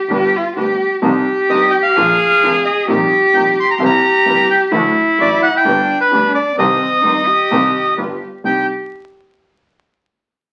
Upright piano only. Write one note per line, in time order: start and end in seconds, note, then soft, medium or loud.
0.10 0.30 G1 medium
0.10 0.30 G2 medium
0.10 0.30 D3 medium
0.10 0.30 G3 medium
0.10 0.30 B3 medium
0.10 0.30 G4 medium
0.57 0.76 D2 medium
0.57 0.76 D3 medium
0.57 0.76 G3 soft
0.57 0.76 B3 soft
0.57 0.76 G4 medium
1.02 1.22 C2 medium
1.02 1.22 C3 medium
1.02 1.22 D3 medium
1.02 1.22 G3 medium
1.02 1.22 C4 medium
1.02 1.22 D#4 medium
1.49 1.69 G1 medium
1.49 1.69 G2 medium
1.49 1.69 D3 medium
1.49 1.69 G3 soft
1.49 1.69 C4 soft
1.49 1.69 D#4 medium
1.97 2.16 A#1 medium
1.97 2.16 A#2 medium
1.97 2.16 D3 medium
1.97 2.16 F3 medium
1.97 2.16 A#3 medium
1.97 2.16 F4 medium
2.43 2.62 F1 medium
2.43 2.62 F2 medium
2.43 2.62 D3 medium
2.43 2.62 F3 soft
2.43 2.62 A#3 soft
2.43 2.62 F4 medium
2.88 3.08 A#1 medium
2.88 3.08 A#2 medium
2.88 3.08 C3 medium
2.88 3.07 G3 medium
2.88 3.08 A#3 medium
2.88 3.08 D#4 medium
3.33 3.53 A#1 medium
3.33 3.53 A#2 medium
3.33 3.53 C3 soft
3.33 3.53 G3 soft
3.33 3.54 A#3 soft
3.33 3.54 D#4 medium
3.78 3.99 C2 medium
3.78 3.99 C3 medium
3.78 3.99 G3 medium
3.78 3.99 A#3 medium
3.78 4.00 E4 medium
4.25 4.46 G1 medium
4.25 4.46 G2 medium
4.25 4.45 C3 medium
4.25 4.45 G3 soft
4.25 4.46 A#3 medium
4.25 4.46 E4 medium
4.71 4.92 D2 medium
4.71 4.92 D3 medium
4.71 4.92 F#3 medium
4.71 4.92 A3 medium
4.71 4.92 F#4 medium
5.18 5.38 A1 medium
5.18 5.38 A2 medium
5.18 5.38 D3 soft
5.18 5.38 F#3 soft
5.18 5.38 A3 soft
5.18 5.38 F#4 medium
5.65 5.84 G1 medium
5.65 5.85 G2 medium
5.65 5.84 D3 medium
5.65 5.84 G3 medium
5.65 5.85 B3 medium
5.65 5.85 G4 medium
6.11 6.31 D2 medium
6.11 6.31 D3 medium
6.11 6.31 G3 soft
6.11 6.31 B3 soft
6.11 6.31 G4 medium
6.58 6.78 C2 medium
6.58 6.78 C3 medium
6.58 6.78 D#3 medium
6.58 6.78 G3 medium
6.58 6.78 C4 medium
6.58 6.78 G4 medium
7.04 7.24 G1 medium
7.04 7.23 G2 medium
7.04 7.23 D#3 soft
7.04 7.24 G3 soft
7.04 7.24 C4 soft
7.04 7.24 G4 medium
7.51 7.71 C2 medium
7.51 7.71 C3 medium
7.51 7.71 D#3 medium
7.51 7.71 G3 medium
7.51 7.71 C4 medium
7.51 7.71 G4 medium
7.97 8.17 G1 medium
7.97 8.17 G2 medium
7.97 8.17 D3 soft
7.97 8.17 G3 soft
7.97 8.17 B3 soft
7.97 8.18 F4 medium
8.44 8.64 C2 medium
8.44 8.64 G3 medium
8.44 8.64 C4 medium
8.44 8.64 D#4 medium